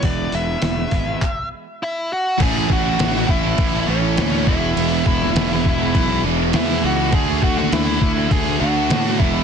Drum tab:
CC |----------------|x---x---x---x---|x---x---x---x---|x---x---x---x---|
HH |o-o-o-o---------|----------------|----------------|----------------|
CP |--------x-------|----------------|----------------|----------------|
SD |----o-----------|----oo------o---|---oo-------o---|---oo-------o---|
BD |o-----o-o-------|o-o---o-o-----o-|--o---o-o-------|o-o---o-o-----o-|